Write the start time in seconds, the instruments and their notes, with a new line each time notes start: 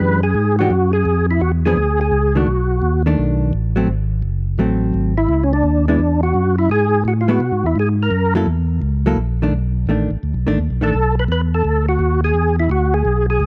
Already playing: hollow-body jazz guitar E3 G#3 D4 G4, tonewheel organ B4
0.00 tonewheel organ F#2
0.23 tonewheel organ G#4
0.35 tonewheel organ G#2
0.59 hollow-body jazz guitar E3 G#3 D4 G4, tonewheel organ F#4
0.70 tonewheel organ F#2
0.93 tonewheel organ G#4
1.05 tonewheel organ F2
1.31 tonewheel organ E4
1.41 tonewheel organ E2 F#4
1.66 hollow-body jazz guitar F3 B3 D4 G#4, tonewheel organ G#4
1.77 tonewheel organ D2
2.01 tonewheel organ G#4
2.12 tonewheel organ C#2
2.35 hollow-body jazz guitar D#3 A3 D4, tonewheel organ F#4
2.47 tonewheel organ B1
2.82 tonewheel organ D#2
3.06 hollow-body jazz guitar D#3 A3 D4
3.18 tonewheel organ B1
3.53 tonewheel organ A1
3.76 hollow-body jazz guitar F#3 A3 C4
3.87 tonewheel organ G#1
4.22 tonewheel organ F#1
4.58 tonewheel organ A1, hollow-body jazz guitar F#3 A3 C4
4.94 tonewheel organ G#1
5.18 tonewheel organ E4
5.29 tonewheel organ C#2
5.43 tonewheel organ C#4
5.53 tonewheel organ D4
5.63 tonewheel organ D#2
5.88 hollow-body jazz guitar G#3 B3 E4, tonewheel organ D4
5.99 tonewheel organ E2
6.23 tonewheel organ F#4
6.34 tonewheel organ F#2
6.59 tonewheel organ E4
6.70 tonewheel organ G#2 G#4
7.05 tonewheel organ A2 F#4
7.21 tonewheel organ F4
7.28 hollow-body jazz guitar G#3 B3 E4, tonewheel organ F#4
7.40 tonewheel organ B2
7.52 tonewheel organ G#2
7.64 tonewheel organ E2 E4
7.76 tonewheel organ G#2 G#4
8.03 tonewheel organ A#4
8.11 tonewheel organ F#2
8.35 hollow-body jazz guitar F#3 A#3 E4 A4
8.46 tonewheel organ E2
8.82 tonewheel organ C#2
9.06 hollow-body jazz guitar F#3 A#3 E4 A4
9.16 tonewheel organ A#1
9.42 hollow-body jazz guitar D#3 A3 D4
9.52 tonewheel organ B1
9.87 tonewheel organ A1, hollow-body jazz guitar D#3 A3 D4
10.11 tonewheel organ A1
10.23 tonewheel organ D2
10.34 tonewheel organ B1
10.47 tonewheel organ A1, hollow-body jazz guitar D#3 A3 D4
10.58 tonewheel organ D#2
10.70 tonewheel organ B1
10.81 tonewheel organ A1 A4, hollow-body jazz guitar D#3 A3 D4
10.93 tonewheel organ B1
11.19 tonewheel organ B4
11.28 tonewheel organ E2 B4
11.54 tonewheel organ A4
11.64 tonewheel organ D2
11.89 tonewheel organ F#4
11.99 tonewheel organ D#2
12.24 tonewheel organ G#4
12.34 tonewheel organ E2
12.60 tonewheel organ E4
12.70 tonewheel organ D2 F#4
12.94 tonewheel organ G#4
13.05 tonewheel organ B1
13.30 tonewheel organ G#4
13.40 tonewheel organ C#2